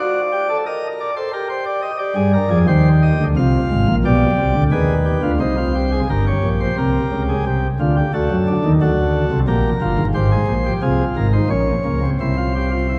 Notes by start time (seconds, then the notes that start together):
0.00 F#4 D5
0.32 G4
0.49 A4
0.66 A#4 D#5
1.00 D5
1.16 A4 C5
1.33 G4 A#4
1.50 C5
1.66 D5
1.82 D#5
1.99 G4 D5
2.16 G2 G3 G#4
2.34 A#4
2.50 F2 F3 G#4
2.67 D#2 D#3 G4 C5
3.02 D#5
3.20 D2 D3
3.37 C2 C3 F4 F5
3.71 G#1 G#2
3.88 A#1 A#2
4.05 B1 B2 G4 D5
4.38 C2 C3
4.55 D2 D3
4.72 D#2 D#3 G#4 B4
5.06 G4
5.23 D2 D3 F4
5.40 C2 C3 D#4 C5
5.58 F4
5.75 G4
5.92 G#4
6.10 G1 G2 G4 A#4
6.27 C#5
6.44 A#1 A#2
6.61 C5
6.78 C2 C3 A#4
7.12 C#2 C#3
7.29 G#4
7.46 C2 C3 G4
7.80 D2 D3 F4
7.97 G4
8.13 D2 D3 F#4 A4
8.31 F#2 F#3
8.48 D4
8.65 D#2 D#3
8.81 D2 D3 F#4 A4
9.31 C2 C3
9.48 A#1 A#2 G4 A#4
9.82 G1 G2 F4
9.98 G#1 G#2
10.14 G#1 G#2 G4 C5
10.32 G#4
10.48 A#1 A#2
10.66 G4
10.82 C2 C3 F4 G#4
11.16 G#1 G#2 A#4
11.33 D#4 C5
11.50 A#1 A#2 C#4 C#5
11.85 C#2 C#3 A#3
12.03 C4
12.20 C2 C3 E4 C5
12.37 F4
12.55 G4
12.72 F4
12.89 E4